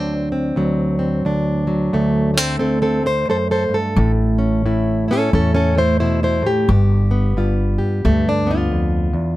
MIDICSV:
0, 0, Header, 1, 3, 480
1, 0, Start_track
1, 0, Tempo, 679502
1, 890, Time_signature, 4, 2, 24, 8
1, 6616, End_track
2, 0, Start_track
2, 0, Title_t, "Steel-string acoustic guitar"
2, 0, Program_c, 0, 25
2, 0, Note_on_c, 0, 38, 69
2, 0, Note_on_c, 0, 50, 48
2, 0, Note_on_c, 0, 54, 45
2, 0, Note_on_c, 0, 60, 42
2, 0, Note_on_c, 0, 62, 86
2, 90, Note_off_c, 0, 62, 0
2, 219, Note_off_c, 0, 60, 0
2, 226, Note_on_c, 0, 60, 45
2, 389, Note_off_c, 0, 38, 0
2, 396, Note_off_c, 0, 54, 0
2, 397, Note_on_c, 0, 38, 70
2, 404, Note_on_c, 0, 54, 47
2, 691, Note_off_c, 0, 60, 0
2, 699, Note_on_c, 0, 60, 42
2, 867, Note_off_c, 0, 60, 0
2, 875, Note_off_c, 0, 38, 0
2, 883, Note_on_c, 0, 38, 71
2, 890, Note_on_c, 0, 62, 49
2, 894, Note_off_c, 0, 50, 0
2, 1173, Note_off_c, 0, 54, 0
2, 1182, Note_on_c, 0, 54, 45
2, 1357, Note_off_c, 0, 38, 0
2, 1365, Note_on_c, 0, 38, 75
2, 1369, Note_on_c, 0, 57, 50
2, 1651, Note_off_c, 0, 57, 0
2, 1654, Note_on_c, 0, 57, 46
2, 1677, Note_off_c, 0, 54, 0
2, 1677, Note_on_c, 0, 60, 81
2, 1681, Note_off_c, 0, 62, 0
2, 1681, Note_on_c, 0, 69, 89
2, 1823, Note_off_c, 0, 60, 0
2, 1832, Note_off_c, 0, 69, 0
2, 1832, Note_on_c, 0, 60, 65
2, 1837, Note_off_c, 0, 38, 0
2, 1840, Note_on_c, 0, 69, 76
2, 1846, Note_on_c, 0, 38, 66
2, 1983, Note_off_c, 0, 60, 0
2, 1988, Note_off_c, 0, 69, 0
2, 1992, Note_on_c, 0, 60, 73
2, 1996, Note_on_c, 0, 69, 75
2, 2133, Note_off_c, 0, 57, 0
2, 2142, Note_on_c, 0, 57, 45
2, 2154, Note_off_c, 0, 69, 0
2, 2161, Note_off_c, 0, 60, 0
2, 2162, Note_on_c, 0, 69, 71
2, 2165, Note_off_c, 0, 69, 0
2, 2167, Note_on_c, 0, 72, 80
2, 2321, Note_off_c, 0, 38, 0
2, 2323, Note_on_c, 0, 42, 60
2, 2329, Note_off_c, 0, 72, 0
2, 2329, Note_on_c, 0, 69, 72
2, 2336, Note_on_c, 0, 72, 77
2, 2375, Note_off_c, 0, 69, 0
2, 2477, Note_off_c, 0, 72, 0
2, 2481, Note_on_c, 0, 69, 72
2, 2486, Note_on_c, 0, 72, 78
2, 2564, Note_off_c, 0, 69, 0
2, 2604, Note_off_c, 0, 42, 0
2, 2607, Note_on_c, 0, 43, 59
2, 2644, Note_on_c, 0, 69, 83
2, 2648, Note_off_c, 0, 72, 0
2, 2805, Note_off_c, 0, 43, 0
2, 2813, Note_on_c, 0, 45, 72
2, 2903, Note_off_c, 0, 69, 0
2, 3098, Note_on_c, 0, 61, 42
2, 3282, Note_off_c, 0, 45, 0
2, 3288, Note_off_c, 0, 57, 0
2, 3289, Note_on_c, 0, 45, 71
2, 3291, Note_on_c, 0, 64, 50
2, 3578, Note_off_c, 0, 64, 0
2, 3589, Note_on_c, 0, 64, 46
2, 3600, Note_off_c, 0, 61, 0
2, 3609, Note_on_c, 0, 61, 78
2, 3620, Note_on_c, 0, 69, 92
2, 3758, Note_off_c, 0, 61, 0
2, 3760, Note_off_c, 0, 45, 0
2, 3767, Note_on_c, 0, 45, 72
2, 3768, Note_on_c, 0, 61, 69
2, 3769, Note_off_c, 0, 69, 0
2, 3778, Note_on_c, 0, 69, 80
2, 3909, Note_off_c, 0, 61, 0
2, 3917, Note_on_c, 0, 61, 73
2, 3920, Note_off_c, 0, 69, 0
2, 3928, Note_on_c, 0, 69, 80
2, 4063, Note_on_c, 0, 57, 46
2, 4072, Note_off_c, 0, 64, 0
2, 4081, Note_on_c, 0, 64, 70
2, 4083, Note_off_c, 0, 61, 0
2, 4083, Note_off_c, 0, 69, 0
2, 4086, Note_on_c, 0, 72, 89
2, 4230, Note_off_c, 0, 72, 0
2, 4232, Note_off_c, 0, 64, 0
2, 4239, Note_on_c, 0, 64, 69
2, 4240, Note_on_c, 0, 72, 83
2, 4244, Note_off_c, 0, 45, 0
2, 4246, Note_on_c, 0, 47, 59
2, 4393, Note_off_c, 0, 64, 0
2, 4400, Note_off_c, 0, 72, 0
2, 4401, Note_on_c, 0, 64, 65
2, 4408, Note_on_c, 0, 72, 76
2, 4534, Note_off_c, 0, 47, 0
2, 4537, Note_on_c, 0, 45, 59
2, 4564, Note_off_c, 0, 64, 0
2, 4567, Note_on_c, 0, 67, 84
2, 4569, Note_off_c, 0, 72, 0
2, 4709, Note_off_c, 0, 57, 0
2, 4725, Note_off_c, 0, 67, 0
2, 4729, Note_off_c, 0, 45, 0
2, 4732, Note_on_c, 0, 43, 73
2, 4735, Note_on_c, 0, 67, 50
2, 5023, Note_on_c, 0, 59, 47
2, 5198, Note_off_c, 0, 43, 0
2, 5207, Note_on_c, 0, 43, 74
2, 5212, Note_on_c, 0, 65, 49
2, 5490, Note_off_c, 0, 67, 0
2, 5499, Note_on_c, 0, 67, 46
2, 5676, Note_off_c, 0, 43, 0
2, 5684, Note_on_c, 0, 43, 75
2, 5685, Note_off_c, 0, 65, 0
2, 5688, Note_on_c, 0, 57, 94
2, 5847, Note_off_c, 0, 57, 0
2, 5849, Note_off_c, 0, 67, 0
2, 5854, Note_on_c, 0, 62, 80
2, 5974, Note_off_c, 0, 59, 0
2, 5982, Note_on_c, 0, 59, 48
2, 6009, Note_on_c, 0, 65, 76
2, 6011, Note_off_c, 0, 62, 0
2, 6155, Note_off_c, 0, 43, 0
2, 6157, Note_on_c, 0, 41, 61
2, 6450, Note_off_c, 0, 41, 0
2, 6452, Note_on_c, 0, 40, 61
2, 6616, Note_off_c, 0, 40, 0
2, 6616, Note_off_c, 0, 59, 0
2, 6616, Note_off_c, 0, 65, 0
2, 6616, End_track
3, 0, Start_track
3, 0, Title_t, "Upright bass"
3, 0, Program_c, 1, 32
3, 2801, Note_on_c, 1, 33, 94
3, 3557, Note_off_c, 1, 33, 0
3, 3766, Note_on_c, 1, 40, 86
3, 4521, Note_off_c, 1, 40, 0
3, 4723, Note_on_c, 1, 31, 99
3, 5478, Note_off_c, 1, 31, 0
3, 5685, Note_on_c, 1, 38, 90
3, 6439, Note_off_c, 1, 38, 0
3, 6616, End_track
0, 0, End_of_file